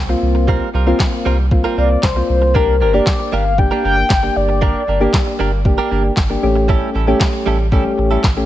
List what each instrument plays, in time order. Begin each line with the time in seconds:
Already playing: sub bass C2
0.09 synth keys A#3 C4 F4, muted clean electric guitar stroke
0.22 sub bass C2
0.35 muted clean electric guitar stroke
0.48 clean electric guitar G3 C4 F4 A#4, kick
0.74 sub bass C2, clean electric guitar G3 C4 F4 A#4
0.87 clean electric guitar G3 C4 F4 A#4, synth keys A#3 C4 F4
1.00 muted clean electric guitar stroke, kick, snare, clap
1.12 muted clean electric guitar stroke
1.25 sub bass C2, clean electric guitar G3 C4 F4 A#4
1.38 muted clean electric guitar stroke
1.51 synth keys A#3 C4 F4, muted clean electric guitar stroke, kick
1.64 clean electric guitar G3 C4 F4 A#4
1.77 sub bass C2, clean electric guitar G3 C4 F4 A#4, soft synth lead D5
1.90 muted clean electric guitar stroke
2.03 sub bass C2, soft synth lead C5, muted clean electric guitar stroke, kick, snare, clap
2.16 synth keys A#3 C4 F4, muted clean electric guitar stroke
2.29 sub bass C2, soft synth lead C5
2.42 muted clean electric guitar stroke
2.55 clean electric guitar A#3 D4 G4 A#4, soft synth lead A#4, kick
2.80 sub bass G1, clean electric guitar A#3 D4 G4 A#4, soft synth lead A#4
2.93 synth keys A#3 D4 G4, clean electric guitar A#3 D4 G4 A#4, soft synth lead D5
3.06 muted clean electric guitar stroke, kick, snare, clap
3.19 muted clean electric guitar stroke
3.32 sub bass G1, clean electric guitar A#3 D4 G4 A#4, soft synth lead F5
3.45 muted clean electric guitar stroke
3.58 synth keys A#3 D4 G4, soft synth lead G5, muted clean electric guitar stroke, kick
3.71 clean electric guitar A#3 D4 G4 A#4
3.84 sub bass G1, clean electric guitar A#3 D4 G4 A#4, soft synth lead G5
3.97 muted clean electric guitar stroke
4.10 sub bass G1, muted clean electric guitar stroke, kick, snare, clap
4.23 synth keys A#3 D4 G4, muted clean electric guitar stroke
4.36 sub bass G1, soft synth lead D5
4.49 muted clean electric guitar stroke
4.61 clean electric guitar A#3 D4 G4 A#4, kick
4.87 sub bass G1, clean electric guitar A#3 D4 G4 A#4
5.00 synth keys A#3 D4 G4, clean electric guitar A#3 D4 G4 A#4
5.13 kick, snare, clap
5.26 muted clean electric guitar stroke
5.39 sub bass G1, clean electric guitar A#3 D4 G4 A#4
5.52 muted clean electric guitar stroke
5.65 synth keys A#3 D4 G4, muted clean electric guitar stroke, kick
5.78 clean electric guitar A#3 D4 G4 A#4
5.91 sub bass G1, clean electric guitar A#3 D4 G4 A#4
6.04 muted clean electric guitar stroke
6.17 sub bass G1, muted clean electric guitar stroke, kick, snare, clap
6.30 synth keys A#3 D4 G4, muted clean electric guitar stroke
6.43 sub bass A1, synth keys A3 C#4 G4
6.56 muted clean electric guitar stroke
6.68 clean electric guitar G3 C#4 E4 A4, kick
6.94 sub bass A1, clean electric guitar G3 C#4 E4 A4
7.07 clean electric guitar G3 C#4 E4 A4, synth keys A3 C#4 G4
7.20 kick, snare, clap
7.33 muted clean electric guitar stroke
7.46 sub bass A1, clean electric guitar G3 C#4 E4 A4
7.59 muted clean electric guitar stroke
7.72 clean electric guitar G3 C#4 E4 A4, synth keys A3 C#4 G4, kick
7.85 muted clean electric guitar stroke
7.98 sub bass A1, muted clean electric guitar stroke
8.11 clean electric guitar G3 C#4 E4 A4
8.24 sub bass A1, kick, snare, clap
8.37 synth keys A3 C#4 G4, muted clean electric guitar stroke